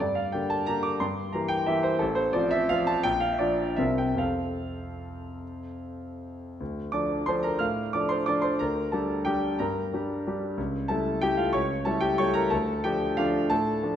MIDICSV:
0, 0, Header, 1, 2, 480
1, 0, Start_track
1, 0, Key_signature, -1, "major"
1, 0, Tempo, 333148
1, 16, Time_signature, 3, 2, 24, 8
1, 2897, Tempo, 347423
1, 4817, Tempo, 400000
1, 8657, Key_signature, -1, "minor"
1, 8657, Tempo, 332963
1, 13937, Tempo, 323974
1, 19415, End_track
2, 0, Start_track
2, 0, Title_t, "Grand piano"
2, 0, Program_c, 0, 0
2, 0, Control_c, 0, 64, 127
2, 1, Note_on_c, 0, 74, 67
2, 13, Note_on_c, 0, 43, 39
2, 41, Control_c, 0, 64, 0
2, 217, Note_on_c, 0, 77, 56
2, 243, Note_off_c, 0, 74, 0
2, 262, Control_c, 0, 64, 127
2, 464, Note_on_c, 0, 79, 48
2, 476, Note_off_c, 0, 77, 0
2, 477, Note_off_c, 0, 43, 0
2, 486, Note_on_c, 0, 58, 29
2, 487, Note_on_c, 0, 50, 29
2, 493, Note_on_c, 0, 67, 30
2, 718, Note_on_c, 0, 81, 68
2, 720, Note_off_c, 0, 79, 0
2, 924, Note_off_c, 0, 50, 0
2, 924, Note_off_c, 0, 58, 0
2, 928, Note_off_c, 0, 67, 0
2, 957, Note_on_c, 0, 82, 74
2, 968, Note_off_c, 0, 81, 0
2, 975, Note_on_c, 0, 50, 30
2, 983, Note_on_c, 0, 58, 35
2, 988, Note_on_c, 0, 67, 38
2, 1193, Note_on_c, 0, 86, 69
2, 1207, Note_off_c, 0, 82, 0
2, 1404, Note_off_c, 0, 50, 0
2, 1408, Note_off_c, 0, 58, 0
2, 1411, Note_off_c, 0, 67, 0
2, 1441, Note_off_c, 0, 86, 0
2, 1442, Note_on_c, 0, 84, 65
2, 1453, Note_on_c, 0, 43, 41
2, 1477, Control_c, 0, 64, 0
2, 1670, Control_c, 0, 64, 127
2, 1910, Note_on_c, 0, 82, 58
2, 1913, Note_off_c, 0, 43, 0
2, 1922, Note_off_c, 0, 84, 0
2, 1930, Note_on_c, 0, 52, 36
2, 1933, Note_on_c, 0, 58, 33
2, 1935, Note_on_c, 0, 67, 34
2, 2138, Note_on_c, 0, 79, 73
2, 2164, Note_off_c, 0, 82, 0
2, 2372, Note_off_c, 0, 52, 0
2, 2373, Note_off_c, 0, 58, 0
2, 2374, Note_off_c, 0, 67, 0
2, 2398, Note_on_c, 0, 76, 71
2, 2402, Note_off_c, 0, 79, 0
2, 2415, Note_on_c, 0, 52, 39
2, 2420, Note_on_c, 0, 58, 39
2, 2423, Note_on_c, 0, 67, 40
2, 2636, Note_on_c, 0, 72, 64
2, 2649, Note_off_c, 0, 76, 0
2, 2846, Note_off_c, 0, 52, 0
2, 2849, Note_off_c, 0, 58, 0
2, 2850, Note_off_c, 0, 67, 0
2, 2866, Note_on_c, 0, 69, 67
2, 2884, Note_off_c, 0, 72, 0
2, 2890, Note_on_c, 0, 33, 53
2, 2920, Control_c, 0, 64, 0
2, 3092, Note_on_c, 0, 72, 74
2, 3111, Note_off_c, 0, 69, 0
2, 3122, Control_c, 0, 64, 127
2, 3338, Note_on_c, 0, 74, 68
2, 3348, Note_off_c, 0, 33, 0
2, 3348, Note_off_c, 0, 72, 0
2, 3352, Note_on_c, 0, 53, 36
2, 3364, Note_on_c, 0, 60, 37
2, 3366, Note_on_c, 0, 65, 38
2, 3582, Note_on_c, 0, 76, 83
2, 3600, Note_off_c, 0, 74, 0
2, 3804, Note_off_c, 0, 53, 0
2, 3811, Note_off_c, 0, 60, 0
2, 3812, Note_off_c, 0, 65, 0
2, 3838, Note_on_c, 0, 77, 88
2, 3845, Note_off_c, 0, 76, 0
2, 3856, Note_on_c, 0, 53, 41
2, 3860, Note_on_c, 0, 60, 37
2, 3862, Note_on_c, 0, 65, 42
2, 4081, Note_on_c, 0, 81, 79
2, 4089, Note_off_c, 0, 77, 0
2, 4285, Note_off_c, 0, 53, 0
2, 4287, Note_off_c, 0, 60, 0
2, 4288, Note_off_c, 0, 65, 0
2, 4311, Note_on_c, 0, 79, 90
2, 4325, Note_off_c, 0, 81, 0
2, 4325, Note_on_c, 0, 34, 53
2, 4362, Control_c, 0, 64, 0
2, 4544, Note_on_c, 0, 77, 68
2, 4559, Note_off_c, 0, 79, 0
2, 4591, Control_c, 0, 64, 127
2, 4705, Note_off_c, 0, 77, 0
2, 4715, Note_on_c, 0, 76, 46
2, 4797, Note_off_c, 0, 34, 0
2, 4798, Note_on_c, 0, 74, 61
2, 4810, Note_on_c, 0, 53, 31
2, 4815, Note_off_c, 0, 76, 0
2, 4817, Note_on_c, 0, 62, 30
2, 4823, Note_on_c, 0, 65, 35
2, 5232, Note_off_c, 0, 53, 0
2, 5235, Note_off_c, 0, 62, 0
2, 5238, Note_off_c, 0, 65, 0
2, 5254, Note_on_c, 0, 76, 66
2, 5269, Note_on_c, 0, 36, 40
2, 5273, Note_off_c, 0, 74, 0
2, 5273, Note_on_c, 0, 48, 34
2, 5280, Note_on_c, 0, 60, 32
2, 5286, Note_on_c, 0, 70, 33
2, 5309, Control_c, 0, 64, 0
2, 5510, Note_off_c, 0, 76, 0
2, 5512, Note_on_c, 0, 79, 54
2, 5518, Control_c, 0, 64, 127
2, 5712, Note_off_c, 0, 48, 0
2, 5712, Note_on_c, 0, 41, 39
2, 5715, Note_off_c, 0, 60, 0
2, 5718, Note_off_c, 0, 70, 0
2, 5730, Note_on_c, 0, 48, 28
2, 5742, Note_on_c, 0, 60, 30
2, 5743, Note_off_c, 0, 36, 0
2, 5754, Note_on_c, 0, 77, 59
2, 5756, Note_on_c, 0, 69, 30
2, 5758, Note_off_c, 0, 79, 0
2, 5786, Control_c, 0, 64, 0
2, 5993, Control_c, 0, 64, 127
2, 7258, Control_c, 0, 64, 0
2, 7462, Control_c, 0, 64, 127
2, 8432, Note_off_c, 0, 77, 0
2, 8583, Note_off_c, 0, 41, 0
2, 8592, Note_off_c, 0, 48, 0
2, 8597, Note_off_c, 0, 60, 0
2, 8605, Note_off_c, 0, 69, 0
2, 8658, Note_on_c, 0, 38, 40
2, 8683, Control_c, 0, 64, 0
2, 8905, Control_c, 0, 64, 127
2, 9117, Note_on_c, 0, 86, 61
2, 9131, Note_off_c, 0, 38, 0
2, 9131, Note_on_c, 0, 74, 42
2, 9134, Note_on_c, 0, 53, 29
2, 9139, Note_on_c, 0, 62, 30
2, 9143, Note_on_c, 0, 69, 31
2, 9584, Note_off_c, 0, 53, 0
2, 9586, Note_off_c, 0, 62, 0
2, 9589, Note_off_c, 0, 69, 0
2, 9597, Note_off_c, 0, 74, 0
2, 9609, Note_on_c, 0, 84, 71
2, 9625, Note_off_c, 0, 86, 0
2, 9632, Note_on_c, 0, 72, 53
2, 9636, Note_on_c, 0, 53, 32
2, 9641, Note_on_c, 0, 62, 34
2, 9642, Note_on_c, 0, 69, 41
2, 9849, Note_on_c, 0, 82, 61
2, 9863, Note_off_c, 0, 72, 0
2, 9867, Note_on_c, 0, 70, 43
2, 9869, Note_off_c, 0, 84, 0
2, 10071, Note_off_c, 0, 53, 0
2, 10074, Note_off_c, 0, 62, 0
2, 10074, Note_off_c, 0, 69, 0
2, 10080, Note_on_c, 0, 89, 63
2, 10096, Note_off_c, 0, 70, 0
2, 10100, Note_on_c, 0, 45, 41
2, 10100, Note_on_c, 0, 77, 53
2, 10104, Note_off_c, 0, 82, 0
2, 10148, Control_c, 0, 64, 0
2, 10364, Control_c, 0, 64, 127
2, 10554, Note_off_c, 0, 77, 0
2, 10573, Note_off_c, 0, 45, 0
2, 10576, Note_on_c, 0, 86, 66
2, 10578, Note_off_c, 0, 89, 0
2, 10589, Note_on_c, 0, 53, 33
2, 10592, Note_on_c, 0, 74, 44
2, 10597, Note_on_c, 0, 62, 31
2, 10605, Note_on_c, 0, 69, 30
2, 10802, Note_on_c, 0, 84, 66
2, 10820, Note_off_c, 0, 74, 0
2, 10824, Note_on_c, 0, 72, 52
2, 10829, Note_off_c, 0, 86, 0
2, 11030, Note_off_c, 0, 53, 0
2, 11034, Note_off_c, 0, 62, 0
2, 11039, Note_off_c, 0, 69, 0
2, 11051, Note_on_c, 0, 86, 66
2, 11058, Note_off_c, 0, 72, 0
2, 11065, Note_off_c, 0, 84, 0
2, 11068, Note_on_c, 0, 53, 31
2, 11075, Note_on_c, 0, 74, 58
2, 11076, Note_on_c, 0, 62, 37
2, 11086, Note_on_c, 0, 69, 37
2, 11276, Note_on_c, 0, 84, 63
2, 11294, Note_on_c, 0, 72, 50
2, 11302, Note_off_c, 0, 74, 0
2, 11307, Note_off_c, 0, 86, 0
2, 11499, Note_off_c, 0, 53, 0
2, 11503, Note_off_c, 0, 62, 0
2, 11509, Note_off_c, 0, 69, 0
2, 11523, Note_off_c, 0, 72, 0
2, 11527, Note_on_c, 0, 82, 62
2, 11531, Note_off_c, 0, 84, 0
2, 11546, Note_on_c, 0, 70, 53
2, 11550, Note_on_c, 0, 38, 44
2, 11580, Control_c, 0, 64, 0
2, 11827, Control_c, 0, 64, 127
2, 11981, Note_off_c, 0, 70, 0
2, 11999, Note_on_c, 0, 81, 50
2, 12002, Note_off_c, 0, 38, 0
2, 12004, Note_off_c, 0, 82, 0
2, 12017, Note_on_c, 0, 55, 29
2, 12017, Note_on_c, 0, 69, 45
2, 12026, Note_on_c, 0, 62, 29
2, 12031, Note_on_c, 0, 67, 33
2, 12452, Note_off_c, 0, 55, 0
2, 12457, Note_off_c, 0, 62, 0
2, 12460, Note_off_c, 0, 67, 0
2, 12467, Note_off_c, 0, 69, 0
2, 12472, Note_on_c, 0, 79, 62
2, 12489, Note_on_c, 0, 55, 33
2, 12489, Note_on_c, 0, 67, 46
2, 12492, Note_off_c, 0, 81, 0
2, 12495, Note_on_c, 0, 62, 34
2, 12929, Note_off_c, 0, 55, 0
2, 12932, Note_off_c, 0, 62, 0
2, 12944, Note_off_c, 0, 67, 0
2, 12963, Note_on_c, 0, 82, 60
2, 12969, Note_off_c, 0, 79, 0
2, 12972, Note_on_c, 0, 70, 48
2, 12979, Note_on_c, 0, 43, 45
2, 13008, Control_c, 0, 64, 0
2, 13206, Control_c, 0, 64, 127
2, 13441, Note_off_c, 0, 43, 0
2, 13462, Note_on_c, 0, 55, 31
2, 13471, Note_on_c, 0, 62, 30
2, 13477, Note_on_c, 0, 67, 33
2, 13891, Note_off_c, 0, 55, 0
2, 13896, Note_off_c, 0, 62, 0
2, 13899, Note_off_c, 0, 67, 0
2, 13945, Note_on_c, 0, 55, 35
2, 13953, Note_on_c, 0, 62, 33
2, 13960, Note_on_c, 0, 67, 39
2, 14112, Note_off_c, 0, 70, 0
2, 14167, Note_off_c, 0, 82, 0
2, 14367, Note_off_c, 0, 55, 0
2, 14372, Note_off_c, 0, 62, 0
2, 14376, Note_off_c, 0, 67, 0
2, 14397, Note_on_c, 0, 37, 45
2, 14431, Control_c, 0, 64, 0
2, 14625, Control_c, 0, 64, 127
2, 14855, Note_on_c, 0, 81, 60
2, 14859, Note_off_c, 0, 37, 0
2, 14871, Note_on_c, 0, 69, 50
2, 14883, Note_on_c, 0, 55, 30
2, 14887, Note_on_c, 0, 64, 37
2, 14889, Note_on_c, 0, 57, 35
2, 15319, Note_off_c, 0, 55, 0
2, 15321, Note_off_c, 0, 64, 0
2, 15322, Note_off_c, 0, 57, 0
2, 15326, Note_off_c, 0, 69, 0
2, 15346, Note_on_c, 0, 79, 74
2, 15353, Note_off_c, 0, 81, 0
2, 15364, Note_on_c, 0, 67, 60
2, 15365, Note_on_c, 0, 55, 32
2, 15372, Note_on_c, 0, 57, 37
2, 15373, Note_on_c, 0, 64, 38
2, 15582, Note_on_c, 0, 77, 60
2, 15591, Note_off_c, 0, 67, 0
2, 15598, Note_on_c, 0, 65, 49
2, 15600, Note_off_c, 0, 79, 0
2, 15797, Note_off_c, 0, 55, 0
2, 15800, Note_off_c, 0, 57, 0
2, 15801, Note_off_c, 0, 64, 0
2, 15810, Note_on_c, 0, 85, 71
2, 15822, Note_off_c, 0, 65, 0
2, 15825, Note_on_c, 0, 73, 58
2, 15829, Note_on_c, 0, 37, 45
2, 15831, Note_off_c, 0, 77, 0
2, 15873, Control_c, 0, 64, 0
2, 16066, Control_c, 0, 64, 127
2, 16269, Note_off_c, 0, 73, 0
2, 16288, Note_on_c, 0, 81, 64
2, 16290, Note_off_c, 0, 37, 0
2, 16295, Note_off_c, 0, 85, 0
2, 16306, Note_on_c, 0, 69, 53
2, 16307, Note_on_c, 0, 55, 35
2, 16312, Note_on_c, 0, 57, 34
2, 16319, Note_on_c, 0, 64, 35
2, 16518, Note_on_c, 0, 79, 70
2, 16533, Note_off_c, 0, 69, 0
2, 16533, Note_on_c, 0, 67, 53
2, 16541, Note_off_c, 0, 81, 0
2, 16748, Note_off_c, 0, 55, 0
2, 16751, Note_off_c, 0, 57, 0
2, 16755, Note_off_c, 0, 64, 0
2, 16772, Note_off_c, 0, 67, 0
2, 16779, Note_on_c, 0, 85, 79
2, 16782, Note_off_c, 0, 79, 0
2, 16792, Note_on_c, 0, 73, 63
2, 16794, Note_on_c, 0, 55, 35
2, 16794, Note_on_c, 0, 57, 38
2, 16803, Note_on_c, 0, 64, 39
2, 17006, Note_on_c, 0, 82, 76
2, 17023, Note_on_c, 0, 70, 49
2, 17026, Note_off_c, 0, 73, 0
2, 17037, Note_off_c, 0, 85, 0
2, 17236, Note_off_c, 0, 55, 0
2, 17236, Note_off_c, 0, 57, 0
2, 17241, Note_off_c, 0, 64, 0
2, 17253, Note_on_c, 0, 81, 66
2, 17258, Note_off_c, 0, 70, 0
2, 17267, Note_off_c, 0, 82, 0
2, 17274, Note_on_c, 0, 69, 52
2, 17276, Note_on_c, 0, 38, 50
2, 17314, Control_c, 0, 64, 0
2, 17521, Control_c, 0, 64, 127
2, 17735, Note_off_c, 0, 69, 0
2, 17752, Note_on_c, 0, 79, 68
2, 17756, Note_off_c, 0, 38, 0
2, 17759, Note_off_c, 0, 81, 0
2, 17765, Note_on_c, 0, 53, 36
2, 17765, Note_on_c, 0, 67, 55
2, 17772, Note_on_c, 0, 57, 37
2, 17777, Note_on_c, 0, 62, 35
2, 18213, Note_off_c, 0, 53, 0
2, 18216, Note_off_c, 0, 57, 0
2, 18219, Note_off_c, 0, 62, 0
2, 18227, Note_off_c, 0, 67, 0
2, 18243, Note_on_c, 0, 77, 82
2, 18254, Note_on_c, 0, 53, 38
2, 18256, Note_off_c, 0, 79, 0
2, 18258, Note_on_c, 0, 65, 55
2, 18267, Note_on_c, 0, 57, 38
2, 18269, Note_on_c, 0, 62, 46
2, 18689, Note_off_c, 0, 53, 0
2, 18696, Note_off_c, 0, 57, 0
2, 18697, Note_off_c, 0, 62, 0
2, 18706, Note_off_c, 0, 65, 0
2, 18726, Note_on_c, 0, 81, 74
2, 18732, Note_off_c, 0, 77, 0
2, 18743, Note_on_c, 0, 69, 59
2, 18745, Note_on_c, 0, 45, 53
2, 18772, Control_c, 0, 64, 0
2, 18987, Control_c, 0, 64, 127
2, 19201, Note_off_c, 0, 45, 0
2, 19217, Note_on_c, 0, 53, 35
2, 19224, Note_on_c, 0, 57, 37
2, 19232, Note_on_c, 0, 62, 41
2, 19415, Note_off_c, 0, 53, 0
2, 19415, Note_off_c, 0, 57, 0
2, 19415, Note_off_c, 0, 62, 0
2, 19415, Note_off_c, 0, 69, 0
2, 19415, Note_off_c, 0, 81, 0
2, 19415, End_track
0, 0, End_of_file